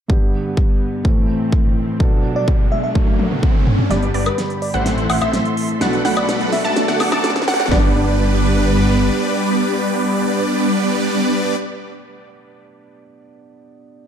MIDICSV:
0, 0, Header, 1, 9, 480
1, 0, Start_track
1, 0, Key_signature, 1, "major"
1, 0, Tempo, 476190
1, 97, Time_signature, 4, 2, 24, 8
1, 14186, End_track
2, 0, Start_track
2, 0, Title_t, "Synth pluck"
2, 0, Program_c, 0, 84
2, 3937, Note_on_c, 0, 74, 91
2, 4141, Note_off_c, 0, 74, 0
2, 4177, Note_on_c, 0, 74, 94
2, 4362, Note_off_c, 0, 74, 0
2, 4777, Note_on_c, 0, 78, 105
2, 5108, Note_off_c, 0, 78, 0
2, 5138, Note_on_c, 0, 78, 94
2, 5239, Note_off_c, 0, 78, 0
2, 5258, Note_on_c, 0, 76, 86
2, 5442, Note_off_c, 0, 76, 0
2, 5857, Note_on_c, 0, 78, 92
2, 6068, Note_off_c, 0, 78, 0
2, 6098, Note_on_c, 0, 78, 100
2, 6669, Note_off_c, 0, 78, 0
2, 6698, Note_on_c, 0, 81, 113
2, 6909, Note_off_c, 0, 81, 0
2, 6937, Note_on_c, 0, 78, 93
2, 7149, Note_off_c, 0, 78, 0
2, 7177, Note_on_c, 0, 81, 98
2, 7362, Note_off_c, 0, 81, 0
2, 7537, Note_on_c, 0, 78, 108
2, 7748, Note_off_c, 0, 78, 0
2, 7778, Note_on_c, 0, 74, 95
2, 11651, Note_off_c, 0, 74, 0
2, 14186, End_track
3, 0, Start_track
3, 0, Title_t, "FM electric piano"
3, 0, Program_c, 1, 5
3, 2378, Note_on_c, 1, 74, 87
3, 2508, Note_off_c, 1, 74, 0
3, 2739, Note_on_c, 1, 76, 81
3, 2815, Note_off_c, 1, 76, 0
3, 2859, Note_on_c, 1, 76, 70
3, 2935, Note_off_c, 1, 76, 0
3, 4298, Note_on_c, 1, 71, 87
3, 4428, Note_off_c, 1, 71, 0
3, 4657, Note_on_c, 1, 74, 87
3, 4787, Note_off_c, 1, 74, 0
3, 5138, Note_on_c, 1, 76, 89
3, 5214, Note_off_c, 1, 76, 0
3, 5257, Note_on_c, 1, 76, 73
3, 5334, Note_off_c, 1, 76, 0
3, 6218, Note_on_c, 1, 74, 92
3, 6348, Note_off_c, 1, 74, 0
3, 6578, Note_on_c, 1, 76, 89
3, 6654, Note_off_c, 1, 76, 0
3, 6697, Note_on_c, 1, 76, 81
3, 6774, Note_off_c, 1, 76, 0
3, 14186, End_track
4, 0, Start_track
4, 0, Title_t, "Supersaw synth"
4, 0, Program_c, 2, 81
4, 3936, Note_on_c, 2, 55, 85
4, 3936, Note_on_c, 2, 59, 77
4, 3936, Note_on_c, 2, 62, 77
4, 3936, Note_on_c, 2, 71, 79
4, 3936, Note_on_c, 2, 74, 95
4, 4141, Note_off_c, 2, 55, 0
4, 4141, Note_off_c, 2, 59, 0
4, 4141, Note_off_c, 2, 62, 0
4, 4141, Note_off_c, 2, 71, 0
4, 4141, Note_off_c, 2, 74, 0
4, 4177, Note_on_c, 2, 55, 87
4, 4177, Note_on_c, 2, 59, 80
4, 4177, Note_on_c, 2, 62, 79
4, 4177, Note_on_c, 2, 71, 78
4, 4177, Note_on_c, 2, 74, 94
4, 4362, Note_off_c, 2, 55, 0
4, 4362, Note_off_c, 2, 59, 0
4, 4362, Note_off_c, 2, 62, 0
4, 4362, Note_off_c, 2, 71, 0
4, 4362, Note_off_c, 2, 74, 0
4, 4776, Note_on_c, 2, 60, 90
4, 4777, Note_on_c, 2, 57, 96
4, 4777, Note_on_c, 2, 64, 91
4, 4777, Note_on_c, 2, 72, 92
4, 4777, Note_on_c, 2, 78, 110
4, 5108, Note_off_c, 2, 57, 0
4, 5108, Note_off_c, 2, 60, 0
4, 5108, Note_off_c, 2, 64, 0
4, 5108, Note_off_c, 2, 72, 0
4, 5108, Note_off_c, 2, 78, 0
4, 5136, Note_on_c, 2, 57, 89
4, 5136, Note_on_c, 2, 64, 79
4, 5136, Note_on_c, 2, 72, 83
4, 5136, Note_on_c, 2, 78, 99
4, 5137, Note_on_c, 2, 60, 83
4, 5239, Note_off_c, 2, 57, 0
4, 5239, Note_off_c, 2, 60, 0
4, 5239, Note_off_c, 2, 64, 0
4, 5239, Note_off_c, 2, 72, 0
4, 5239, Note_off_c, 2, 78, 0
4, 5256, Note_on_c, 2, 72, 72
4, 5256, Note_on_c, 2, 76, 82
4, 5257, Note_on_c, 2, 57, 74
4, 5257, Note_on_c, 2, 60, 68
4, 5257, Note_on_c, 2, 64, 69
4, 5442, Note_off_c, 2, 57, 0
4, 5442, Note_off_c, 2, 60, 0
4, 5442, Note_off_c, 2, 64, 0
4, 5442, Note_off_c, 2, 72, 0
4, 5442, Note_off_c, 2, 76, 0
4, 5856, Note_on_c, 2, 66, 78
4, 5856, Note_on_c, 2, 71, 78
4, 5856, Note_on_c, 2, 78, 90
4, 5857, Note_on_c, 2, 57, 84
4, 5857, Note_on_c, 2, 62, 78
4, 6068, Note_off_c, 2, 57, 0
4, 6068, Note_off_c, 2, 62, 0
4, 6068, Note_off_c, 2, 66, 0
4, 6068, Note_off_c, 2, 71, 0
4, 6068, Note_off_c, 2, 78, 0
4, 6096, Note_on_c, 2, 57, 97
4, 6096, Note_on_c, 2, 62, 89
4, 6096, Note_on_c, 2, 66, 89
4, 6096, Note_on_c, 2, 71, 87
4, 6096, Note_on_c, 2, 78, 105
4, 6668, Note_off_c, 2, 57, 0
4, 6668, Note_off_c, 2, 62, 0
4, 6668, Note_off_c, 2, 66, 0
4, 6668, Note_off_c, 2, 71, 0
4, 6668, Note_off_c, 2, 78, 0
4, 6696, Note_on_c, 2, 57, 102
4, 6696, Note_on_c, 2, 62, 94
4, 6696, Note_on_c, 2, 66, 91
4, 6696, Note_on_c, 2, 74, 90
4, 6696, Note_on_c, 2, 81, 110
4, 6908, Note_off_c, 2, 57, 0
4, 6908, Note_off_c, 2, 62, 0
4, 6908, Note_off_c, 2, 66, 0
4, 6908, Note_off_c, 2, 74, 0
4, 6908, Note_off_c, 2, 81, 0
4, 6936, Note_on_c, 2, 57, 83
4, 6936, Note_on_c, 2, 62, 77
4, 6936, Note_on_c, 2, 66, 80
4, 6936, Note_on_c, 2, 74, 75
4, 6936, Note_on_c, 2, 78, 91
4, 7148, Note_off_c, 2, 57, 0
4, 7148, Note_off_c, 2, 62, 0
4, 7148, Note_off_c, 2, 66, 0
4, 7148, Note_off_c, 2, 74, 0
4, 7148, Note_off_c, 2, 78, 0
4, 7176, Note_on_c, 2, 57, 87
4, 7176, Note_on_c, 2, 62, 78
4, 7176, Note_on_c, 2, 66, 78
4, 7176, Note_on_c, 2, 74, 79
4, 7176, Note_on_c, 2, 81, 96
4, 7361, Note_off_c, 2, 57, 0
4, 7361, Note_off_c, 2, 62, 0
4, 7361, Note_off_c, 2, 66, 0
4, 7362, Note_off_c, 2, 74, 0
4, 7362, Note_off_c, 2, 81, 0
4, 7537, Note_on_c, 2, 57, 92
4, 7537, Note_on_c, 2, 62, 86
4, 7537, Note_on_c, 2, 66, 85
4, 7537, Note_on_c, 2, 74, 82
4, 7537, Note_on_c, 2, 78, 102
4, 7748, Note_off_c, 2, 62, 0
4, 7748, Note_off_c, 2, 74, 0
4, 7748, Note_off_c, 2, 78, 0
4, 7749, Note_off_c, 2, 57, 0
4, 7749, Note_off_c, 2, 66, 0
4, 7777, Note_on_c, 2, 55, 88
4, 7777, Note_on_c, 2, 59, 83
4, 7777, Note_on_c, 2, 62, 81
4, 7777, Note_on_c, 2, 71, 86
4, 7777, Note_on_c, 2, 74, 102
4, 11650, Note_off_c, 2, 55, 0
4, 11650, Note_off_c, 2, 59, 0
4, 11650, Note_off_c, 2, 62, 0
4, 11650, Note_off_c, 2, 71, 0
4, 11650, Note_off_c, 2, 74, 0
4, 14186, End_track
5, 0, Start_track
5, 0, Title_t, "String section"
5, 0, Program_c, 3, 48
5, 97, Note_on_c, 3, 43, 72
5, 97, Note_on_c, 3, 50, 67
5, 97, Note_on_c, 3, 59, 80
5, 1048, Note_off_c, 3, 43, 0
5, 1048, Note_off_c, 3, 50, 0
5, 1048, Note_off_c, 3, 59, 0
5, 1056, Note_on_c, 3, 52, 64
5, 1056, Note_on_c, 3, 60, 76
5, 1057, Note_on_c, 3, 45, 70
5, 2007, Note_off_c, 3, 52, 0
5, 2007, Note_off_c, 3, 60, 0
5, 2008, Note_off_c, 3, 45, 0
5, 2017, Note_on_c, 3, 47, 74
5, 2017, Note_on_c, 3, 57, 67
5, 2017, Note_on_c, 3, 62, 81
5, 2967, Note_off_c, 3, 47, 0
5, 2967, Note_off_c, 3, 57, 0
5, 2967, Note_off_c, 3, 62, 0
5, 2976, Note_on_c, 3, 45, 67
5, 2977, Note_on_c, 3, 38, 73
5, 2977, Note_on_c, 3, 54, 81
5, 3927, Note_off_c, 3, 38, 0
5, 3927, Note_off_c, 3, 45, 0
5, 3928, Note_off_c, 3, 54, 0
5, 3936, Note_on_c, 3, 74, 71
5, 3936, Note_on_c, 3, 83, 84
5, 3937, Note_on_c, 3, 67, 75
5, 4887, Note_off_c, 3, 67, 0
5, 4887, Note_off_c, 3, 74, 0
5, 4887, Note_off_c, 3, 83, 0
5, 4897, Note_on_c, 3, 69, 82
5, 4897, Note_on_c, 3, 76, 67
5, 4897, Note_on_c, 3, 84, 83
5, 5848, Note_off_c, 3, 76, 0
5, 5848, Note_off_c, 3, 84, 0
5, 5857, Note_on_c, 3, 83, 87
5, 5858, Note_on_c, 3, 74, 75
5, 6808, Note_off_c, 3, 74, 0
5, 6808, Note_off_c, 3, 83, 0
5, 6816, Note_on_c, 3, 78, 73
5, 6816, Note_on_c, 3, 86, 90
5, 7748, Note_off_c, 3, 69, 0
5, 7767, Note_off_c, 3, 78, 0
5, 7767, Note_off_c, 3, 86, 0
5, 7776, Note_on_c, 3, 62, 79
5, 7777, Note_on_c, 3, 55, 88
5, 7777, Note_on_c, 3, 71, 98
5, 11649, Note_off_c, 3, 62, 0
5, 11650, Note_off_c, 3, 55, 0
5, 11650, Note_off_c, 3, 71, 0
5, 14186, End_track
6, 0, Start_track
6, 0, Title_t, "Felt piano"
6, 0, Program_c, 4, 0
6, 86, Note_on_c, 4, 43, 69
6, 92, Note_on_c, 4, 50, 64
6, 98, Note_on_c, 4, 55, 65
6, 104, Note_on_c, 4, 59, 64
6, 110, Note_on_c, 4, 67, 80
6, 311, Control_c, 4, 64, 127
6, 1003, Note_off_c, 4, 43, 0
6, 1006, Note_off_c, 4, 50, 0
6, 1009, Note_off_c, 4, 55, 0
6, 1013, Note_off_c, 4, 59, 0
6, 1016, Note_off_c, 4, 67, 0
6, 1045, Note_on_c, 4, 45, 71
6, 1051, Note_on_c, 4, 52, 64
6, 1057, Note_on_c, 4, 57, 64
6, 1063, Note_on_c, 4, 60, 64
6, 1068, Control_c, 4, 64, 0
6, 1069, Note_on_c, 4, 69, 79
6, 1250, Control_c, 4, 64, 127
6, 1963, Note_off_c, 4, 45, 0
6, 1966, Note_off_c, 4, 52, 0
6, 1969, Note_off_c, 4, 57, 0
6, 1972, Note_off_c, 4, 60, 0
6, 1975, Note_off_c, 4, 69, 0
6, 2005, Note_on_c, 4, 47, 75
6, 2011, Note_on_c, 4, 54, 71
6, 2017, Note_on_c, 4, 59, 67
6, 2023, Note_on_c, 4, 62, 71
6, 2028, Control_c, 4, 64, 0
6, 2030, Note_on_c, 4, 69, 83
6, 2205, Control_c, 4, 64, 127
6, 2923, Note_off_c, 4, 47, 0
6, 2926, Note_off_c, 4, 54, 0
6, 2929, Note_off_c, 4, 59, 0
6, 2932, Note_off_c, 4, 62, 0
6, 2935, Note_off_c, 4, 69, 0
6, 2965, Note_on_c, 4, 54, 75
6, 2973, Note_on_c, 4, 57, 70
6, 2981, Note_on_c, 4, 62, 68
6, 2989, Note_on_c, 4, 69, 81
6, 2993, Control_c, 4, 64, 0
6, 3148, Control_c, 4, 64, 127
6, 3883, Note_off_c, 4, 54, 0
6, 3887, Note_off_c, 4, 57, 0
6, 3891, Note_off_c, 4, 62, 0
6, 3895, Note_off_c, 4, 69, 0
6, 3925, Note_on_c, 4, 43, 74
6, 3931, Note_on_c, 4, 50, 71
6, 3938, Note_on_c, 4, 55, 68
6, 3943, Note_on_c, 4, 59, 68
6, 3949, Control_c, 4, 64, 0
6, 3949, Note_on_c, 4, 67, 87
6, 4109, Control_c, 4, 64, 127
6, 4843, Note_off_c, 4, 43, 0
6, 4846, Note_off_c, 4, 50, 0
6, 4849, Note_off_c, 4, 55, 0
6, 4852, Note_off_c, 4, 59, 0
6, 4855, Note_off_c, 4, 67, 0
6, 4885, Note_on_c, 4, 45, 76
6, 4891, Note_on_c, 4, 52, 71
6, 4897, Note_on_c, 4, 57, 70
6, 4903, Note_on_c, 4, 60, 68
6, 4909, Control_c, 4, 64, 0
6, 4909, Note_on_c, 4, 69, 83
6, 5082, Control_c, 4, 64, 127
6, 5803, Note_off_c, 4, 45, 0
6, 5806, Note_off_c, 4, 52, 0
6, 5809, Note_off_c, 4, 57, 0
6, 5812, Note_off_c, 4, 60, 0
6, 5815, Note_off_c, 4, 69, 0
6, 5845, Note_on_c, 4, 47, 80
6, 5851, Note_on_c, 4, 54, 75
6, 5857, Note_on_c, 4, 59, 75
6, 5863, Note_on_c, 4, 62, 71
6, 5869, Control_c, 4, 64, 0
6, 5870, Note_on_c, 4, 69, 88
6, 6074, Control_c, 4, 64, 127
6, 6763, Note_off_c, 4, 47, 0
6, 6766, Note_off_c, 4, 54, 0
6, 6769, Note_off_c, 4, 59, 0
6, 6772, Note_off_c, 4, 62, 0
6, 6776, Note_off_c, 4, 69, 0
6, 6806, Note_on_c, 4, 54, 80
6, 6814, Note_on_c, 4, 57, 73
6, 6822, Note_on_c, 4, 62, 72
6, 6830, Note_on_c, 4, 69, 91
6, 6832, Control_c, 4, 64, 0
6, 6989, Control_c, 4, 64, 127
6, 7723, Note_off_c, 4, 54, 0
6, 7727, Note_off_c, 4, 57, 0
6, 7731, Note_off_c, 4, 62, 0
6, 7736, Note_off_c, 4, 69, 0
6, 7759, Note_on_c, 4, 59, 86
6, 7772, Note_on_c, 4, 62, 82
6, 7784, Note_on_c, 4, 67, 80
6, 7788, Control_c, 4, 64, 0
6, 7796, Note_on_c, 4, 74, 99
6, 7952, Control_c, 4, 64, 127
6, 11633, Note_off_c, 4, 59, 0
6, 11645, Note_off_c, 4, 62, 0
6, 11657, Note_off_c, 4, 67, 0
6, 11669, Note_off_c, 4, 74, 0
6, 14151, Control_c, 4, 64, 0
6, 14186, End_track
7, 0, Start_track
7, 0, Title_t, "Detuned saw bass"
7, 0, Program_c, 5, 39
7, 3937, Note_on_c, 5, 31, 97
7, 4153, Note_off_c, 5, 31, 0
7, 4178, Note_on_c, 5, 31, 95
7, 4338, Note_off_c, 5, 31, 0
7, 4778, Note_on_c, 5, 33, 99
7, 5113, Note_off_c, 5, 33, 0
7, 5137, Note_on_c, 5, 33, 98
7, 5233, Note_off_c, 5, 33, 0
7, 5257, Note_on_c, 5, 33, 95
7, 5418, Note_off_c, 5, 33, 0
7, 5857, Note_on_c, 5, 35, 96
7, 6073, Note_off_c, 5, 35, 0
7, 6097, Note_on_c, 5, 35, 99
7, 6673, Note_off_c, 5, 35, 0
7, 6696, Note_on_c, 5, 35, 98
7, 6913, Note_off_c, 5, 35, 0
7, 6937, Note_on_c, 5, 38, 94
7, 7153, Note_off_c, 5, 38, 0
7, 7176, Note_on_c, 5, 38, 96
7, 7513, Note_off_c, 5, 38, 0
7, 7536, Note_on_c, 5, 38, 104
7, 7753, Note_off_c, 5, 38, 0
7, 7778, Note_on_c, 5, 31, 97
7, 9177, Note_off_c, 5, 31, 0
7, 14186, End_track
8, 0, Start_track
8, 0, Title_t, "Riser"
8, 0, Program_c, 6, 103
8, 97, Note_on_c, 6, 60, 62
8, 3937, Note_off_c, 6, 60, 0
8, 3937, Note_on_c, 6, 60, 73
8, 7777, Note_off_c, 6, 60, 0
8, 14186, End_track
9, 0, Start_track
9, 0, Title_t, "Drums"
9, 97, Note_on_c, 9, 36, 111
9, 198, Note_off_c, 9, 36, 0
9, 577, Note_on_c, 9, 36, 107
9, 678, Note_off_c, 9, 36, 0
9, 1057, Note_on_c, 9, 36, 107
9, 1158, Note_off_c, 9, 36, 0
9, 1537, Note_on_c, 9, 36, 109
9, 1638, Note_off_c, 9, 36, 0
9, 2017, Note_on_c, 9, 36, 110
9, 2118, Note_off_c, 9, 36, 0
9, 2497, Note_on_c, 9, 36, 116
9, 2598, Note_off_c, 9, 36, 0
9, 2977, Note_on_c, 9, 36, 110
9, 2977, Note_on_c, 9, 48, 58
9, 3078, Note_off_c, 9, 36, 0
9, 3078, Note_off_c, 9, 48, 0
9, 3097, Note_on_c, 9, 48, 53
9, 3198, Note_off_c, 9, 48, 0
9, 3217, Note_on_c, 9, 48, 72
9, 3318, Note_off_c, 9, 48, 0
9, 3337, Note_on_c, 9, 47, 65
9, 3438, Note_off_c, 9, 47, 0
9, 3457, Note_on_c, 9, 36, 117
9, 3457, Note_on_c, 9, 47, 77
9, 3558, Note_off_c, 9, 36, 0
9, 3558, Note_off_c, 9, 47, 0
9, 3577, Note_on_c, 9, 47, 75
9, 3678, Note_off_c, 9, 47, 0
9, 3697, Note_on_c, 9, 45, 93
9, 3798, Note_off_c, 9, 45, 0
9, 3817, Note_on_c, 9, 45, 82
9, 3918, Note_off_c, 9, 45, 0
9, 3937, Note_on_c, 9, 38, 47
9, 3937, Note_on_c, 9, 42, 94
9, 4038, Note_off_c, 9, 38, 0
9, 4038, Note_off_c, 9, 42, 0
9, 4057, Note_on_c, 9, 42, 38
9, 4158, Note_off_c, 9, 42, 0
9, 4177, Note_on_c, 9, 46, 104
9, 4277, Note_off_c, 9, 46, 0
9, 4297, Note_on_c, 9, 42, 41
9, 4297, Note_on_c, 9, 76, 75
9, 4398, Note_off_c, 9, 42, 0
9, 4398, Note_off_c, 9, 76, 0
9, 4417, Note_on_c, 9, 38, 52
9, 4417, Note_on_c, 9, 42, 93
9, 4517, Note_off_c, 9, 38, 0
9, 4517, Note_off_c, 9, 42, 0
9, 4537, Note_on_c, 9, 42, 38
9, 4638, Note_off_c, 9, 42, 0
9, 4657, Note_on_c, 9, 46, 98
9, 4758, Note_off_c, 9, 46, 0
9, 4777, Note_on_c, 9, 42, 40
9, 4878, Note_off_c, 9, 42, 0
9, 4897, Note_on_c, 9, 38, 57
9, 4897, Note_on_c, 9, 42, 90
9, 4998, Note_off_c, 9, 38, 0
9, 4998, Note_off_c, 9, 42, 0
9, 5017, Note_on_c, 9, 42, 39
9, 5118, Note_off_c, 9, 42, 0
9, 5137, Note_on_c, 9, 46, 102
9, 5137, Note_on_c, 9, 76, 74
9, 5237, Note_off_c, 9, 46, 0
9, 5237, Note_off_c, 9, 76, 0
9, 5257, Note_on_c, 9, 76, 61
9, 5358, Note_off_c, 9, 76, 0
9, 5377, Note_on_c, 9, 38, 65
9, 5377, Note_on_c, 9, 42, 94
9, 5478, Note_off_c, 9, 38, 0
9, 5478, Note_off_c, 9, 42, 0
9, 5497, Note_on_c, 9, 42, 42
9, 5598, Note_off_c, 9, 42, 0
9, 5617, Note_on_c, 9, 46, 107
9, 5718, Note_off_c, 9, 46, 0
9, 5737, Note_on_c, 9, 42, 41
9, 5838, Note_off_c, 9, 42, 0
9, 5857, Note_on_c, 9, 38, 74
9, 5857, Note_on_c, 9, 42, 95
9, 5958, Note_off_c, 9, 38, 0
9, 5958, Note_off_c, 9, 42, 0
9, 5977, Note_on_c, 9, 42, 36
9, 6078, Note_off_c, 9, 42, 0
9, 6097, Note_on_c, 9, 38, 78
9, 6097, Note_on_c, 9, 46, 108
9, 6198, Note_off_c, 9, 38, 0
9, 6198, Note_off_c, 9, 46, 0
9, 6217, Note_on_c, 9, 42, 41
9, 6217, Note_on_c, 9, 76, 78
9, 6318, Note_off_c, 9, 42, 0
9, 6318, Note_off_c, 9, 76, 0
9, 6337, Note_on_c, 9, 38, 82
9, 6337, Note_on_c, 9, 42, 92
9, 6438, Note_off_c, 9, 38, 0
9, 6438, Note_off_c, 9, 42, 0
9, 6457, Note_on_c, 9, 42, 38
9, 6558, Note_off_c, 9, 42, 0
9, 6577, Note_on_c, 9, 38, 87
9, 6577, Note_on_c, 9, 46, 109
9, 6678, Note_off_c, 9, 38, 0
9, 6678, Note_off_c, 9, 46, 0
9, 6697, Note_on_c, 9, 42, 41
9, 6798, Note_off_c, 9, 42, 0
9, 6817, Note_on_c, 9, 38, 91
9, 6817, Note_on_c, 9, 42, 92
9, 6918, Note_off_c, 9, 38, 0
9, 6918, Note_off_c, 9, 42, 0
9, 6937, Note_on_c, 9, 38, 83
9, 6937, Note_on_c, 9, 42, 38
9, 7038, Note_off_c, 9, 38, 0
9, 7038, Note_off_c, 9, 42, 0
9, 7057, Note_on_c, 9, 38, 97
9, 7057, Note_on_c, 9, 46, 110
9, 7057, Note_on_c, 9, 76, 83
9, 7158, Note_off_c, 9, 38, 0
9, 7158, Note_off_c, 9, 46, 0
9, 7158, Note_off_c, 9, 76, 0
9, 7177, Note_on_c, 9, 38, 87
9, 7177, Note_on_c, 9, 76, 66
9, 7278, Note_off_c, 9, 38, 0
9, 7278, Note_off_c, 9, 76, 0
9, 7297, Note_on_c, 9, 38, 104
9, 7297, Note_on_c, 9, 42, 92
9, 7358, Note_off_c, 9, 38, 0
9, 7358, Note_on_c, 9, 38, 90
9, 7398, Note_off_c, 9, 42, 0
9, 7417, Note_off_c, 9, 38, 0
9, 7417, Note_on_c, 9, 38, 94
9, 7417, Note_on_c, 9, 42, 41
9, 7477, Note_off_c, 9, 38, 0
9, 7477, Note_on_c, 9, 38, 96
9, 7518, Note_off_c, 9, 42, 0
9, 7537, Note_off_c, 9, 38, 0
9, 7537, Note_on_c, 9, 38, 110
9, 7537, Note_on_c, 9, 46, 111
9, 7597, Note_off_c, 9, 38, 0
9, 7597, Note_on_c, 9, 38, 99
9, 7638, Note_off_c, 9, 46, 0
9, 7658, Note_off_c, 9, 38, 0
9, 7658, Note_on_c, 9, 38, 97
9, 7658, Note_on_c, 9, 42, 39
9, 7718, Note_off_c, 9, 38, 0
9, 7718, Note_on_c, 9, 38, 97
9, 7759, Note_off_c, 9, 42, 0
9, 7778, Note_off_c, 9, 38, 0
9, 7778, Note_on_c, 9, 36, 109
9, 7778, Note_on_c, 9, 38, 105
9, 7878, Note_off_c, 9, 36, 0
9, 7879, Note_off_c, 9, 38, 0
9, 14186, End_track
0, 0, End_of_file